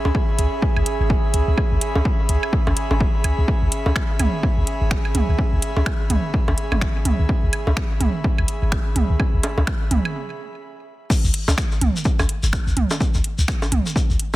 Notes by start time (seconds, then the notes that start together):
Already playing: C#4 G#4 E5 B5
0.05 C#2, low bongo
0.15 kick
0.39 C#2, closed hi-hat
0.62 kick
0.76 C#2, high woodblock
0.86 closed hi-hat
1.00 G#1
1.10 kick
1.34 C#2, closed hi-hat
1.48 C#2
1.58 kick, high woodblock
1.72 C#2
1.81 closed hi-hat
1.95 C#2, low bongo
2.05 kick
2.29 C#2, closed hi-hat
2.43 high woodblock
2.53 kick
2.67 C#2, low bongo
2.77 closed hi-hat
2.91 G#1, low bongo
3.00 kick
3.24 C#2, closed hi-hat, high woodblock
3.38 C#2
3.48 kick
3.62 C#2
3.72 closed hi-hat
3.86 C#2, low bongo
3.96 finger snap, kick
4.19 C#2, closed hi-hat, mid tom, high woodblock
4.43 kick
4.57 C#2
4.67 closed hi-hat
4.81 G#1
4.91 finger snap, kick
5.05 high woodblock
5.15 C#2, closed hi-hat, mid tom
5.29 C#2
5.39 kick
5.53 C#2
5.62 closed hi-hat
5.76 C#2, low bongo
5.86 finger snap, kick, high woodblock
6.10 C#2, closed hi-hat, mid tom
6.34 kick
6.48 C#2, low bongo
6.58 closed hi-hat
6.72 G#1, mid tom, low bongo, high woodblock
6.81 finger snap, kick
7.05 C#2, closed hi-hat, mid tom
7.19 C#2
7.29 kick
7.43 C#2
7.53 closed hi-hat, high woodblock
7.67 C#2, low bongo
7.77 finger snap, kick
8.00 C#2, closed hi-hat, mid tom
8.24 kick
8.38 C#2, high woodblock
8.48 closed hi-hat
8.62 G#1
8.72 finger snap, kick
8.96 C#2, closed hi-hat, mid tom
9.10 C#2
9.20 kick, high woodblock
9.34 C#2
9.43 closed hi-hat, low bongo
9.57 C#2, low bongo
9.67 finger snap, kick
9.91 C#2, closed hi-hat, mid tom
10.05 high woodblock
11.10 kick, crash, shekere
11.24 C#2, shekere
11.34 closed hi-hat
11.48 C#2, low bongo, shekere
11.58 finger snap, kick, shekere
11.72 shekere
11.81 C#2, closed hi-hat, mid tom
11.96 shekere
12.05 kick, shekere
12.19 C#2, low bongo, high woodblock, shekere
12.29 closed hi-hat
12.43 G#1, shekere
12.53 finger snap, kick, shekere
12.67 C#2, shekere
12.77 C#2, closed hi-hat, mid tom
12.90 low bongo, shekere
13.01 kick, shekere
13.14 C#2, shekere
13.24 closed hi-hat
13.38 C#2, shekere
13.48 finger snap, kick, high woodblock, shekere
13.62 low bongo, shekere
13.72 C#2, closed hi-hat, mid tom
13.86 shekere
13.96 kick, shekere
14.10 C#2, shekere
14.20 closed hi-hat